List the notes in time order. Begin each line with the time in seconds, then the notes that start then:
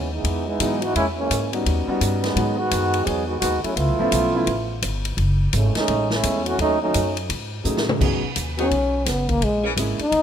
Already playing: D#2 E3 G#3 B3 C#4
0.12 E3 G#3 B3 D#4
0.24 E2, ride
0.47 G#3 B3 D#4 E4
0.59 G#2 E3 F#3 G#3 B3 D#4, hi-hat pedal, ride
0.82 E3 B3 D#4 F#4, ride
0.95 E2 G#3 A#3 C#4 E4, ride
1.17 E3 G#3 A#3 C#4
1.30 G#2, hi-hat pedal, ride
1.52 G3 B3 C#4 D#4 F#4, ride
1.66 D#2, ride
1.87 G3 B3 C#4 D#4 F#4, muted upright bass stroke
2.01 G2, hi-hat pedal, ride
2.23 D#3 F#3 G#3 B3, snare, ride
2.36 G#2 F#3 G#3 B3 D#4 F#4, ride
2.58 D#3 G#3 B3 F#4
2.71 F#2, hi-hat pedal, ride
2.94 ride
3.06 E2 F#3 B3 D#4 G#4, ride
3.27 D#3 G#3 B3 F#4
3.39 D#2 D#3 G#3 B3 F#4, hi-hat pedal, ride
3.62 F#3 A3 C#4 E4, muted upright bass stroke, ride
3.76 C#2 A3 B3 E4 F4, ride
3.88 B1
3.99 A1 F3 A3 B3 C#4 E5
4.12 B1, hi-hat pedal, ride
4.34 F3 A3 B3 C#4 E4
4.47 A1, ride
4.82 G1, hi-hat pedal, ride
5.05 ride
5.17 F#1, ride
5.53 G#1 E3 G#3 A3 C#4, hi-hat pedal, ride
5.75 G#3 A3 C#4 D#4, muted upright bass stroke, snare, ride
5.88 A1, ride
6.10 G#3 A3 C#4 E4, snare
6.23 E2, hi-hat pedal, ride
6.46 E3 A3 C#4 F#4, ride
6.59 D#2 F#3 A3 C#4 D#4, ride
6.81 F#3 A3 C#4 D#4
6.94 F#2, hi-hat pedal, ride
7.17 ride
7.29 G#2, ride
7.64 A2 F#3 A3 C#4 D#4 G#4, hi-hat pedal
7.77 snare
7.89 mid tom
7.99 F#2 F#3 B3 C#4 D#4 G#4, kick, crash
8.23 muted upright bass stroke
8.36 D#2, hi-hat pedal, ride
8.57 F#3 B3 C#4 D#4 F#4 G#4, ride
8.71 B1, ride
9.06 F#1 B3, snare, hi-hat pedal, ride
9.29 A#3, kick, ride
9.41 A#1 G#3, ride
9.63 E3 A#3 C#4 G#4
9.76 G#1 G#3 A#3 C#4 E4 G#4, hi-hat pedal, ride
9.99 D#4, muted upright bass stroke, ride
10.12 D#2, ride